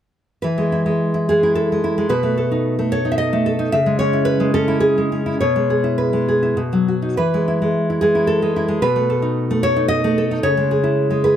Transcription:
0.42 E3 B4
0.58 G#3
0.72 E4
0.86 G#3
1.14 E4
1.29 G#3 G#4
1.43 E4
1.55 A4
1.72 G#3
1.84 E4
1.98 G#3
2.09 B2 B4
2.23 A3
2.38 A4
2.51 D#4
2.79 A3
2.92 A4 C#5
3.05 D#4
3.12 E5
3.18 D#5
3.33 A3
3.46 A4
3.59 D#4
3.72 C#3 E5
3.86 G#3
3.99 C#4 C#5
4.13 E4
4.25 B4
4.40 G#3
4.54 C#4 A4
4.68 E4
4.80 G#4
4.98 G#3
5.12 C#4
5.26 E4
5.41 B2 C#5
5.56 G#3
5.70 G#4
5.84 E4
5.98 B4
6.13 G#3
6.28 G#4
6.43 E4
6.57 B2
6.73 F#3
6.88 F#4
7.02 D#4
7.17 E3 B4
7.34 G#3
7.48 E4
7.62 G#3
7.90 E4
8.01 G#3 G#4
8.15 E4
8.27 A4
8.42 G#3
8.56 E4
8.68 G#3
8.82 B2 B4
8.96 A3
9.10 A4
9.22 D#4
9.51 A3
9.63 A4 C#5
9.76 D#4
9.88 D#5
10.04 A3
10.18 A4
10.31 D#4
10.43 C#3 C#5
10.57 G#3
10.71 G#4
10.84 E4
11.11 G#3
11.24 G#4 B4

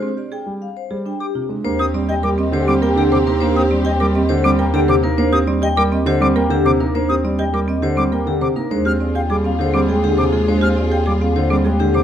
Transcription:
0.02 C4
0.17 G4 D5
0.32 G#4 G5
0.46 G3
0.62 F5
0.77 C5
0.91 G3 G#4
1.06 D4 G5
1.20 G4 D6
1.35 C3 F4
1.49 G#3 D4
1.64 D#2 A#3 C4 D4 G4 C5
1.79 C4 G4 D#6
1.94 G3 C4 G4 D5
2.09 G4 D#5 G5
2.23 G3 G4 A#4 D6
2.38 C4 D#5
2.52 D3 G4 C5
2.57 G4
2.67 G3 C4 D6
2.81 A#3 A#4 G5
2.88 G4
2.96 D3 D4 G4 G5
3.11 C3 C5 D6
3.18 G4
3.26 A#3 D#4 A#4
3.40 A#3 D4 C5
3.49 G4
3.56 C4 G4 D#6
3.70 G3 C4 D5
3.80 G4
3.85 G4 D#5 G5
4.00 G3 A#4 D6
4.11 C4 G4 D#5
4.29 D3 G4 C5
4.42 G3 C4 G4 D6
4.59 A#3 A#4 G5
4.73 D3 D4 G4 G5
4.88 C3 C5 D6
5.03 A#3 D#4 A#4
5.18 A#3 D4 C5
5.32 C4 G4 D#6
5.47 G3 C4 D5
5.62 G4 D#5 G5
5.77 G3 A#4 D6
5.92 C4 D#5
6.06 D3 G4 C5
6.20 G3 C4 D6
6.35 A#3 A#4 G5
6.50 D3 D4 G4
6.65 C3 C5 D6
6.80 A#3 D#4 A#4
6.95 A#3 D4 C5
7.09 C4 G4 D#6
7.24 G3 C4 D5
7.39 G4 D#5 G5
7.53 G3 A#4 D6
7.68 C4 D#5
7.82 D3 G4 C5
7.97 G3 C4 D6
8.12 A#3 A#4 G5
8.26 D3 D4 G4
8.41 C3 C5 D6
8.56 A#3 D#4 A#4
8.71 D#2 G#3 D4 F4 G#4 C5
8.85 C4 G4 F6
9.00 C4 G#4 D5
9.15 G4 F5 G5
9.30 G3 G#4 D6
9.44 C4 F5
9.59 D3 G4 C5
9.63 G#4
9.74 G3 C4 D6
9.89 G#3 G#4 G5
9.94 G#4
10.03 D3 D4 G4
10.18 C3 C5 D6
10.23 G#4
10.33 G#3 F4 G#4
10.48 G#3 D4 C5
10.55 G#4
10.61 C4 G4 F6
10.76 C4 D5
10.85 G#4
10.91 G4 F5 G5
11.06 G3 G#4 D6
11.17 G#4
11.21 C4 F5
11.36 D3 G4 C5
11.48 G3 C4 G#4 D6
11.65 G#3 G#4 G5
11.79 D3 D4 G4 G#4
11.94 C3 C5 D6

